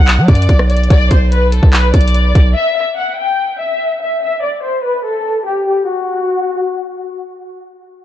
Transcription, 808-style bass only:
Already playing: B1
0.18 F#3
0.28 F#2
0.49 B1
0.90 B1
1.11 B1
1.63 B1
1.94 B1
2.35 B1

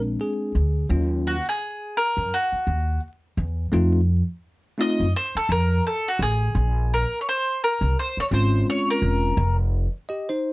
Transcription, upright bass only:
Already playing: A#1
0.55 D2
0.90 D#2
2.17 F#2
2.52 muted upright bass stroke
2.67 D#2
3.37 E2
3.73 F2
5.00 F#2
5.35 muted upright bass stroke
5.49 F2
6.19 A1
6.55 A#1
7.81 C2
8.17 muted upright bass stroke
8.31 G#1
9.02 E1
9.37 F1

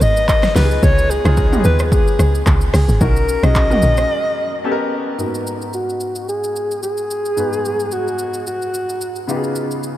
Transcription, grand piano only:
Already playing: B3 D#4 F#4 A#4 C#5
0.55 B3 D#4 F4 G4
0.63 G#4
1.25 B3 D#4 F4 G#4
1.52 B3 D#4 F4 G4
1.59 G#4
3.00 C#4 D#4 F#4 A#4
3.43 C#4 D#4 F#4 G#4
3.70 C#4 D#4 F#4 A#4
4.64 B3 C#4 G4 A4
4.72 A#4
5.18 G#2 A#3 D#4 F#4 A#4
5.25 B3
7.36 G#2 B3 D#4 F#4 B4
9.27 C#3 B3 D#4 F4 G4
9.36 G#4

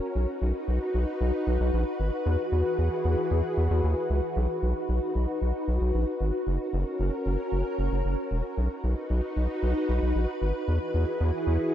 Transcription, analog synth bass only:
0.15 B1
0.42 B1
0.68 B1
0.94 B1
1.21 B1
1.47 B1
1.60 B1
1.73 A#1
2.00 G#1
2.26 E2
2.52 E2
2.79 E2
3.05 E2
3.31 E2
3.57 E2
3.71 E2
3.84 D#2
4.10 C#2
4.36 B1
4.63 B1
4.89 B1
5.15 B1
5.42 B1
5.68 B1
5.81 B1
5.94 A#1
6.21 G#1
6.47 F#1
6.73 F#1
7.00 F#1
7.26 F#1
7.52 F#1
7.79 F#1
7.92 F#1
8.05 F#1
8.31 E1
8.58 B1
8.84 B1
9.10 B1
9.37 B1
9.63 B1
9.89 B1
10.02 B1
10.15 A#1
10.42 G#1
10.68 E2
10.94 E2
11.21 E2
11.47 E2

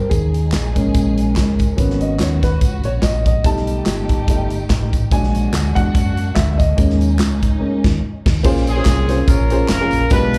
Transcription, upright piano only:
0.10 G#4
0.75 G#3 A#3 C#4
1.77 F#3 A#3 B3 C#4
2.01 D#5
2.21 C#5
2.44 B4
2.85 C#5
3.03 D#5
3.27 D#5
3.44 G3 A3 D#4 A5
4.29 G3 A3 D#4
5.12 F#3 G#3 D4 G#5
5.75 F#3 G#3 D4 F#5
6.35 E5
6.53 E5
6.58 D#5
6.77 G#3 A#3 C#4
7.60 G#3 A#3 C#4
8.43 A#2 A#3 C#4 F4 G#4 C5
8.77 A#3 C#4 F4 G#4 C5
9.09 A#3 C#4 F4 G#4 C5
9.51 A#3 C#4 F4 G#4 C5
9.80 A#3 C#4 F4 G#4 C#5
10.11 B2 G#3 D4 F4 G4 B4

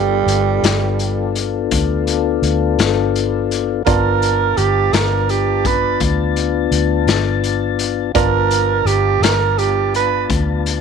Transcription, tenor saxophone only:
Already playing: G3
3.85 A#4
4.57 G4
4.93 A#4
5.30 G4
5.66 B4
8.15 A#4
8.86 G4
9.23 A#4
9.58 G4
9.96 B4

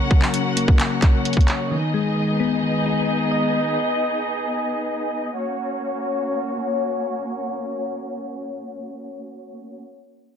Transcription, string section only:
Already playing: C#4 F#4 A#4 F#5
1.71 B3 D#4 G#4 D#5
5.37 A#3 C#4 F#4 C#5

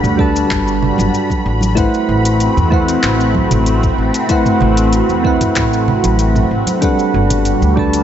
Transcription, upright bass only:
0.04 D2
0.50 G1
0.98 G1
1.46 A1
2.09 A1
2.57 E2
3.04 A1
3.52 A1
3.98 A1
4.61 A1
5.10 E2
5.56 A1
6.05 A1
6.51 A1
7.14 G1
7.62 D2

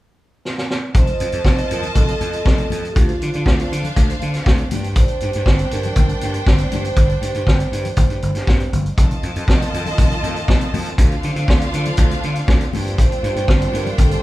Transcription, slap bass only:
0.95 F1
1.20 F2
1.33 F2
1.45 F1
1.70 F2
1.96 F1
2.21 F2
2.46 F1
2.71 F2
2.96 D2
3.22 D3
3.35 D3
3.46 D2
3.72 D3
3.97 D2
4.22 D3
4.46 D2
4.72 G2
5.22 G2
5.35 G2
5.46 G1
5.72 G2
5.96 G1
6.22 G2
6.47 G1
6.72 G2
6.97 G1
7.21 G2
7.35 G2
7.47 G1
7.72 G2
7.97 G1
8.09 G2
8.23 G1
8.34 G2
8.47 G2
8.73 G1
8.98 F1
9.23 F2
9.36 F2
9.48 F1
9.74 F2
9.98 F1
10.23 F2
10.48 F1
10.73 F2
10.99 D2
11.24 D3
11.36 D3
11.48 D2
11.74 D3
11.98 D2
12.24 D3
12.48 D2
12.74 G2
13.23 G2
13.36 G2
13.48 G1
13.73 G2
13.98 G1

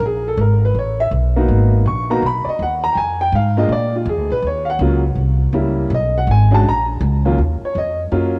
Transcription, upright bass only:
0.00 A#1
0.37 G#1
0.75 A1
1.11 B1
1.48 G#1
1.86 A#1
2.22 B1
2.46 muted upright bass stroke
2.59 D#2
2.95 F2
3.32 G#2
3.69 A#2
4.05 F2
4.18 D2
4.30 A#1
4.42 D#2
4.79 C#2
5.15 C2
5.53 C#2
5.90 B1
6.27 G#1
6.63 A#1
7.01 C#2
7.38 D#2
7.62 muted upright bass stroke
7.75 F2
8.11 F#2

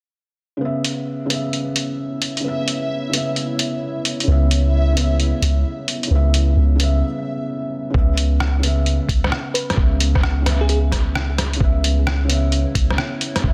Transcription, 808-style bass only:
4.28 C#2
5.42 C#2
6.10 C#2
6.56 C#2
7.95 C#2
9.09 C#2
9.77 C#2
10.23 C#2
11.60 C#2
12.75 C#2
13.44 C#2

